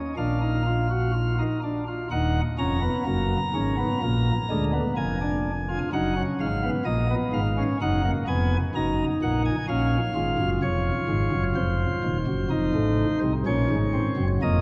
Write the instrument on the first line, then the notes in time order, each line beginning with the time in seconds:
pipe organ
Already playing: C#4
0.17 A#1 A#2 D4 F5
0.41 D#4
0.66 F4
0.90 F#4
1.13 F4
1.39 D#4
1.63 D4
1.88 F4
2.11 D#1 D#2 D#4 F#5
2.58 F1 F2 C#4 A#5
2.81 B3
3.06 F#1 F#2 A#3
3.54 G#1 G#2 C#4
3.77 B3
4.02 A#1 A#2 A#3
4.50 D2 D3 G#3
4.73 B3
4.96 F1 F2 A#3 G#5
5.21 D4
5.69 F4
5.93 F#1 F#2 D#4 F#5
6.17 C#4
6.40 G#1 G#2 F5
6.63 B3
6.85 A#1 A#2 A#3 D#5
7.10 B3
7.33 G#1 G#2 F5
7.57 C#4
7.81 F#1 F#2 D#4 F#5
8.04 A#3
8.27 F1 F2 B3 G#5
8.75 F#1 F#2 D#4 A#5
9.22 A#1 A#2 F#5
9.45 G#5
9.68 A#1 A#2 C#4 F5
10.15 G#1 G#2 F4
10.39 F#1 F#2
10.62 F1 F2 C#5
11.08 G#1 G#2
11.32 F#1 F#2
11.55 F1 F2 C5
12.03 D#1 D#2
12.27 F#1 F#2
12.50 F1 F2 D#4
12.74 A1 A2
13.22 C2 C3
13.46 A#1 A#2 C#4 C#5
13.70 G#1 G#2
13.94 C4
14.17 F#1 F#2
14.42 F1 F2 A#3 D#5